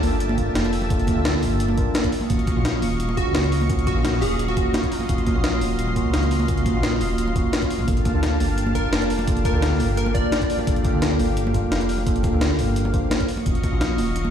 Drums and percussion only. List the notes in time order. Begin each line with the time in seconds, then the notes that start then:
0.03 open hi-hat, high conga
0.20 closed hi-hat
0.29 high conga
0.38 kick, closed hi-hat
0.55 snare, closed hi-hat, high conga
0.64 closed hi-hat
0.73 open hi-hat
0.82 high conga
0.90 kick, closed hi-hat
0.99 closed hi-hat
1.07 kick, closed hi-hat, high conga
1.25 snare, closed hi-hat
1.34 snare
1.43 open hi-hat, high conga
1.60 closed hi-hat
1.68 high conga
1.77 kick, closed hi-hat
1.94 snare, closed hi-hat, high conga
2.04 kick, closed hi-hat
2.12 open hi-hat
2.21 high conga
2.30 kick, closed hi-hat
2.39 closed hi-hat
2.47 kick, closed hi-hat, high conga
2.65 snare, closed hi-hat
2.82 open hi-hat, high conga
3.00 closed hi-hat
3.09 high conga
3.17 kick, closed hi-hat
3.35 snare, closed hi-hat, high conga
3.44 closed hi-hat
3.52 open hi-hat
3.61 high conga
3.70 kick, closed hi-hat
3.79 closed hi-hat
3.87 kick, closed hi-hat, high conga
4.05 snare, closed hi-hat
4.14 snare
4.21 open hi-hat, high conga
4.39 closed hi-hat
4.48 high conga
4.57 kick, closed hi-hat
4.74 snare, closed hi-hat, high conga
4.83 kick, closed hi-hat
4.92 open hi-hat
5.00 high conga
5.09 kick, closed hi-hat
5.18 closed hi-hat
5.27 kick, closed hi-hat, high conga
5.44 snare, closed hi-hat
5.61 open hi-hat, high conga
5.79 closed hi-hat
5.88 high conga
5.96 kick, closed hi-hat
6.14 snare, closed hi-hat, high conga
6.23 closed hi-hat
6.31 open hi-hat
6.40 high conga
6.48 kick, closed hi-hat
6.57 closed hi-hat
6.66 kick, closed hi-hat, high conga
6.83 snare, closed hi-hat
6.92 snare
7.01 open hi-hat, high conga
7.18 closed hi-hat
7.28 high conga
7.36 kick, closed hi-hat
7.52 snare, closed hi-hat, high conga
7.62 kick, closed hi-hat
7.71 open hi-hat
7.79 high conga
7.88 kick, closed hi-hat
7.97 closed hi-hat
8.05 kick, closed hi-hat, high conga
8.23 snare, closed hi-hat
8.40 open hi-hat, high conga
8.58 closed hi-hat
8.67 high conga
8.75 kick, closed hi-hat
8.93 snare, closed hi-hat, high conga
9.02 closed hi-hat
9.10 open hi-hat
9.19 high conga
9.28 kick, closed hi-hat
9.37 closed hi-hat
9.45 kick, closed hi-hat, high conga
9.62 snare, closed hi-hat
9.72 snare
9.80 open hi-hat, high conga
9.97 closed hi-hat
10.06 high conga
10.15 kick, closed hi-hat
10.32 snare, closed hi-hat, high conga
10.41 kick, closed hi-hat
10.50 open hi-hat
10.59 high conga
10.67 kick, closed hi-hat
10.76 closed hi-hat
10.84 kick, closed hi-hat, high conga
11.02 snare, closed hi-hat
11.19 open hi-hat, high conga
11.37 closed hi-hat
11.47 high conga
11.54 kick, closed hi-hat
11.72 snare, closed hi-hat, high conga
11.81 closed hi-hat
11.89 open hi-hat
11.98 high conga
12.07 kick, closed hi-hat
12.16 closed hi-hat
12.23 kick, closed hi-hat, high conga
12.41 snare, closed hi-hat
12.50 snare
12.59 open hi-hat, high conga
12.76 closed hi-hat
12.85 high conga
12.94 kick, closed hi-hat
13.11 snare, closed hi-hat, high conga
13.20 kick, closed hi-hat
13.28 open hi-hat
13.37 high conga
13.46 kick, closed hi-hat
13.55 closed hi-hat
13.63 kick, closed hi-hat, high conga
13.81 snare, closed hi-hat
13.98 open hi-hat, high conga
14.16 closed hi-hat
14.25 high conga